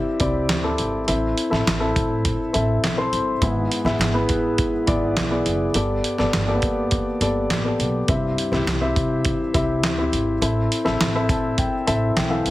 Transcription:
Already playing: upright piano G2 C4 E4 G4 D5 E5
0.20 upright bass C2, upright piano C4 E4 G4 D5, kick, closed hi-hat
0.49 upright bass D2, snare, clap, closed hi-hat
0.63 upright piano C4 E4 G4 A4
0.78 upright bass G#1, closed hi-hat
1.07 upright bass A1, upright piano C4 E4 A4 E5, closed hi-hat
1.38 closed hi-hat
1.50 upright bass A1, upright piano C4 E4 A4 E5, snare
1.67 upright bass A1, snare, clap, closed hi-hat
1.80 upright piano C4 E4 A4 E5
1.96 upright bass A2, kick, closed hi-hat
2.25 kick, closed hi-hat
2.53 upright bass A1, upright piano C4 E4 A4 E5, closed hi-hat
2.84 upright bass B1, snare, clap, closed hi-hat
2.97 upright piano C4 E4 A4 C5
3.12 upright bass G1, closed hi-hat
3.41 upright bass G#1, upright piano G#2 B3 E4 G#4 E5, kick, closed hi-hat
3.72 closed hi-hat
3.85 upright bass G#1, upright piano B3 E4 G#4 E5, snare
3.99 upright bass G#1, snare, clap, closed hi-hat
4.14 upright piano B3 E4 G#4 B4
4.29 upright bass G#2, kick, closed hi-hat
4.58 kick, closed hi-hat
4.87 upright bass G#1, upright piano B3 E4 G#4 D5, kick, closed hi-hat
5.17 upright bass B1, snare, clap, closed hi-hat
5.31 upright piano B3 E4 G#4 D5
5.46 upright bass F#1, closed hi-hat
5.74 upright bass G1, upright piano B3 G4 A4 D5, closed hi-hat
6.04 closed hi-hat
6.18 upright bass G1, upright piano B3 G4 A4 D5, snare
6.33 upright bass G1, snare, clap, closed hi-hat
6.48 upright piano A#3 G4 A4 D5
6.54 upright piano B3
6.62 upright bass G2, kick, closed hi-hat
6.91 kick, closed hi-hat
7.21 upright bass G1, upright piano B3 G4 A4 D5, closed hi-hat
7.50 upright bass A1, snare, clap, closed hi-hat
7.65 upright piano B3 G4 A4 D5
7.79 upright bass B1, closed hi-hat
8.08 upright bass C2, upright piano G2 C4 E4 G4 E5, kick, closed hi-hat
8.38 closed hi-hat
8.52 upright bass C2, upright piano C4 E4 G4 E5, snare
8.66 upright bass C2, snare, clap, closed hi-hat
8.81 upright piano C4 E4 G4 E5
8.96 upright bass C3, kick, closed hi-hat
9.25 kick, closed hi-hat
9.54 upright bass C2, upright piano C4 E4 G4 E5, kick, closed hi-hat
9.83 upright bass D2, snare, clap, closed hi-hat
9.98 upright piano C4 E4 G4 E5
10.12 upright bass G#1, closed hi-hat
10.42 upright bass A1, upright piano C4 E4 A4 E5, closed hi-hat
10.72 closed hi-hat
10.85 upright bass A1, upright piano C4 E4 A4 E5, snare
11.01 upright bass A1, snare, clap, closed hi-hat
11.15 upright piano C4 E4 A4 E5
11.29 upright bass A2, upright piano A5, kick, closed hi-hat
11.58 upright piano G5, kick, closed hi-hat
11.87 upright bass A1, upright piano C4 E4 A4 E5 A5, closed hi-hat
12.16 upright bass B1, upright piano G5, snare, clap, closed hi-hat
12.30 upright piano E3 C4 A4 E5 F5
12.46 upright bass G1, closed hi-hat

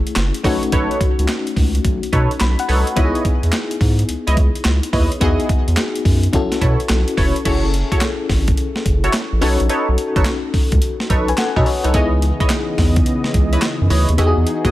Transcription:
Already playing: fm electric piano A3 C#4 E4 G#4
0.07 closed hi-hat
0.16 analog synth bass F#1, snare, clap, closed hi-hat
0.34 closed hi-hat
0.43 analog synth bass B1, fm electric piano A3 C#4 D#4 F#4, analog polysynth D#4 A4 B4 C#5, kick, open hi-hat
0.63 closed hi-hat
0.72 analog synth bass B1, analog polysynth D#4 A4 B4 C#5, kick, closed hi-hat
0.91 closed hi-hat
1.01 kick, closed hi-hat
1.19 analog synth bass C#2, closed hi-hat
1.28 snare, clap, closed hi-hat
1.47 closed hi-hat
1.56 analog synth bass C#2, kick, open hi-hat
1.75 closed hi-hat
1.85 analog synth bass B1, kick, closed hi-hat
2.03 closed hi-hat
2.12 analog synth bass B2, analog polysynth D#4 A4 B4 C#5, kick, closed hi-hat
2.31 closed hi-hat
2.40 analog synth bass B1, fm electric piano B5, snare, clap, closed hi-hat
2.59 fm electric piano F#5, closed hi-hat
2.68 analog synth bass C2, analog polysynth D#4 A4 B4 C#5, open hi-hat
2.87 closed hi-hat
2.96 analog synth bass C#2, fm electric piano B3 D#4 E4 F#4, analog polysynth E4 B4 C#5 D#5, kick, closed hi-hat
3.05 fm electric piano G#4
3.15 closed hi-hat
3.25 kick, closed hi-hat
3.43 analog synth bass E2, closed hi-hat
3.52 snare, clap, closed hi-hat
3.71 closed hi-hat
3.81 analog synth bass G#2, kick, open hi-hat
3.99 closed hi-hat
4.09 analog synth bass C#2, closed hi-hat
4.27 analog synth bass C#2, analog polysynth E4 B4 C#5 D#5, closed hi-hat
4.37 kick, closed hi-hat
4.55 closed hi-hat
4.64 analog synth bass C#2, snare, clap, closed hi-hat
4.83 closed hi-hat
4.93 analog synth bass D#2, analog polysynth E4 B4 C#5 D#5, kick, open hi-hat
5.12 closed hi-hat
5.20 analog synth bass E2, fm electric piano B3 D#4 F#4 G#4, analog polysynth E4 F#4 G#4 D#5, kick, closed hi-hat
5.40 closed hi-hat
5.49 kick, closed hi-hat
5.68 analog synth bass E2, closed hi-hat
5.77 snare, clap, closed hi-hat
5.95 closed hi-hat
6.05 analog synth bass F#2, kick, open hi-hat
6.23 closed hi-hat
6.33 analog synth bass B1, fm electric piano C#4 E4 F#4 A4, kick, closed hi-hat
6.52 snare, closed hi-hat
6.61 analog synth bass B2, analog polysynth E4 A4 B4 C#5, kick, closed hi-hat
6.80 closed hi-hat
6.89 analog synth bass B1, snare, clap, closed hi-hat
7.08 closed hi-hat
7.17 analog synth bass F1, analog polysynth E4 A4 B4 C#5, kick, open hi-hat
7.36 closed hi-hat
7.45 analog synth bass F#1, fm electric piano C#4 E4 G#4 A4, analog polysynth E4 F#4 A4 C#5, kick, closed hi-hat, crash
7.74 closed hi-hat
7.92 analog polysynth E4 F#4 A4 C#5, kick, closed hi-hat
8.01 snare, clap, closed hi-hat
8.29 analog synth bass G#1, kick, snare, open hi-hat
8.48 kick, closed hi-hat
8.57 closed hi-hat
8.76 snare
8.86 analog synth bass F#1, kick, closed hi-hat
9.04 analog polysynth E4 F#4 A4 C#5, closed hi-hat
9.13 snare, clap, closed hi-hat
9.32 analog synth bass A1
9.41 analog synth bass B1, fm electric piano C#4 D#4 F#4 A4, analog polysynth D#4 A4 B4 C#5, open hi-hat
9.60 analog synth bass A#1, closed hi-hat
9.69 analog polysynth D#4 A4 B4 C#5, closed hi-hat
9.89 analog synth bass B1
9.98 closed hi-hat
10.16 analog synth bass A1, analog polysynth D#4 A4 B4 C#5, kick, closed hi-hat
10.25 snare, clap, closed hi-hat
10.54 analog synth bass C#2, kick, open hi-hat
10.72 analog synth bass C#2, kick, closed hi-hat
10.82 closed hi-hat
11.00 snare
11.10 analog synth bass B1, analog polysynth D#4 A4 B4 C#5, kick, closed hi-hat
11.28 fm electric piano B4 G#5, closed hi-hat
11.37 fm electric piano A4 F#5, snare, clap, closed hi-hat
11.56 analog synth bass B2, analog polysynth D#4 A4 B4 C#5, fm electric piano F#4 D#5, kick
11.66 fm electric piano C#5, open hi-hat
11.84 analog synth bass C2, analog polysynth D#4 A4 B4 C#5, fm electric piano D#4 B4, closed hi-hat
11.93 analog synth bass C#2, analog synth pad C#3 E3 B3 D#5, fm electric piano B3 D#4 E4 G#4, analog polysynth E4 B4 C#5 D#5, kick, closed hi-hat
12.22 closed hi-hat
12.40 analog polysynth E4 B4 C#5 D#5, kick, closed hi-hat
12.49 snare, clap, closed hi-hat
12.78 analog synth bass E2, kick, snare, open hi-hat
12.96 kick, closed hi-hat
13.06 closed hi-hat
13.24 snare
13.34 analog synth bass C#2, kick, closed hi-hat
13.53 analog polysynth E4 B4 C#5 D#5, closed hi-hat
13.61 snare, clap, closed hi-hat
13.81 analog synth bass F#2
13.90 analog synth bass D2, analog polysynth E4 B4 C#5 D#5, open hi-hat
14.09 analog synth bass D#2, closed hi-hat
14.18 analog synth bass E2, analog synth pad E3 D#4 F#4 G#4, fm electric piano B3 D#4 F#4 G4, analog polysynth E4 F#4 G#4 D#5, closed hi-hat
14.27 fm electric piano G#4
14.37 analog synth bass E2
14.47 closed hi-hat
14.65 analog synth bass D#2, analog polysynth E4 F#4 G#4 D#5, kick, closed hi-hat

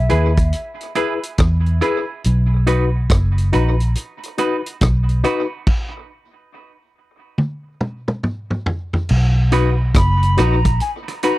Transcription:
Already playing: flute E5
0.09 fingered electric bass D#2, reed electric piano E4 G#4 B4, clean electric guitar E4 G#4 B4, closed hi-hat
0.37 kick, closed hi-hat
0.53 closed hi-hat
0.81 closed hi-hat
0.95 clean electric guitar E4 G#4 B4, reed electric piano E4 G#4 B4, closed hi-hat
1.23 closed hi-hat
1.38 fingered electric bass E2, kick, cross-stick, closed hi-hat
1.66 closed hi-hat
1.81 reed electric piano E4 G#4 B4, clean electric guitar E4 G#4 B4, closed hi-hat
2.24 fingered electric bass B1, closed hi-hat
2.67 reed electric piano D#4 F#4 B4, clean electric guitar D#4 F#4 B4, closed hi-hat
3.10 fingered electric bass F#1, kick, cross-stick, closed hi-hat
3.38 closed hi-hat
3.53 fingered electric bass A#1, reed electric piano D#4 F#4 B4, clean electric guitar D#4 F#4 B4, closed hi-hat
3.80 closed hi-hat
3.95 closed hi-hat
4.23 closed hi-hat
4.38 reed electric piano D#4 F#4 B4, clean electric guitar D#4 F#4 B4, closed hi-hat
4.66 closed hi-hat
4.81 fingered electric bass B1, kick, cross-stick, closed hi-hat
5.09 closed hi-hat
5.24 reed electric piano D#4 F#4 B4, clean electric guitar D#4 F#4 B4, closed hi-hat
5.67 kick, crash
7.38 high tom
7.81 mid tom
8.08 mid tom
8.23 mid tom
8.50 mid tom
8.66 floor tom
8.93 floor tom
9.09 fingered electric bass B1, crash
9.52 reed electric piano D#4 F#4 B4, clean electric guitar D#4 F#4 B4, closed hi-hat
9.95 fingered electric bass F#1, flute B5, kick, cross-stick, closed hi-hat
10.23 closed hi-hat
10.37 fingered electric bass A#1, reed electric piano D#4 F#4 B4, clean electric guitar D#4 F#4 B4, flute A#5, cross-stick, closed hi-hat
10.65 kick, closed hi-hat
10.80 flute G#5, closed hi-hat
11.08 muted clean electric guitar stroke, closed hi-hat
11.23 reed electric piano D#4 F#4 B4, clean electric guitar D#4 F#4 B4, flute A#5, closed hi-hat

